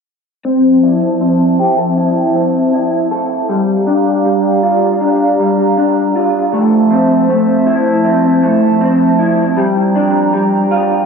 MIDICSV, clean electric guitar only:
0, 0, Header, 1, 2, 480
1, 0, Start_track
1, 0, Key_signature, -1, "major"
1, 0, Tempo, 759494
1, 285, Time_signature, 4, 2, 24, 8
1, 6987, End_track
2, 0, Start_track
2, 0, Title_t, "Clean electric guitar"
2, 0, Program_c, 0, 27
2, 283, Note_on_c, 0, 60, 66
2, 525, Note_on_c, 0, 64, 46
2, 755, Note_off_c, 0, 60, 0
2, 763, Note_on_c, 0, 60, 46
2, 1007, Note_on_c, 0, 67, 49
2, 1127, Note_off_c, 0, 67, 0
2, 1127, Note_on_c, 0, 69, 43
2, 1239, Note_off_c, 0, 64, 0
2, 1247, Note_on_c, 0, 64, 51
2, 1479, Note_off_c, 0, 60, 0
2, 1486, Note_on_c, 0, 60, 39
2, 1719, Note_off_c, 0, 64, 0
2, 1726, Note_on_c, 0, 64, 44
2, 1959, Note_off_c, 0, 69, 0
2, 1967, Note_on_c, 0, 69, 57
2, 2205, Note_on_c, 0, 55, 66
2, 2253, Note_off_c, 0, 60, 0
2, 2254, Note_off_c, 0, 64, 0
2, 2254, Note_off_c, 0, 69, 0
2, 2444, Note_on_c, 0, 62, 47
2, 2679, Note_off_c, 0, 55, 0
2, 2687, Note_on_c, 0, 55, 41
2, 2927, Note_on_c, 0, 65, 56
2, 3159, Note_off_c, 0, 62, 0
2, 3166, Note_on_c, 0, 62, 49
2, 3401, Note_off_c, 0, 55, 0
2, 3409, Note_on_c, 0, 55, 47
2, 3642, Note_off_c, 0, 62, 0
2, 3649, Note_on_c, 0, 62, 46
2, 3888, Note_off_c, 0, 65, 0
2, 3890, Note_on_c, 0, 65, 55
2, 4126, Note_off_c, 0, 55, 0
2, 4129, Note_on_c, 0, 57, 70
2, 4175, Note_off_c, 0, 62, 0
2, 4364, Note_on_c, 0, 60, 46
2, 4598, Note_off_c, 0, 57, 0
2, 4605, Note_on_c, 0, 57, 43
2, 4842, Note_off_c, 0, 65, 0
2, 4844, Note_on_c, 0, 64, 57
2, 5076, Note_off_c, 0, 60, 0
2, 5084, Note_on_c, 0, 60, 50
2, 5320, Note_off_c, 0, 57, 0
2, 5327, Note_on_c, 0, 57, 44
2, 5561, Note_off_c, 0, 60, 0
2, 5568, Note_on_c, 0, 60, 46
2, 5801, Note_off_c, 0, 64, 0
2, 5808, Note_on_c, 0, 64, 51
2, 6044, Note_off_c, 0, 57, 0
2, 6046, Note_on_c, 0, 55, 64
2, 6094, Note_off_c, 0, 60, 0
2, 6094, Note_off_c, 0, 64, 0
2, 6290, Note_on_c, 0, 62, 46
2, 6522, Note_off_c, 0, 55, 0
2, 6529, Note_on_c, 0, 55, 48
2, 6770, Note_on_c, 0, 65, 50
2, 6987, Note_off_c, 0, 55, 0
2, 6987, Note_off_c, 0, 62, 0
2, 6987, Note_off_c, 0, 65, 0
2, 6987, End_track
0, 0, End_of_file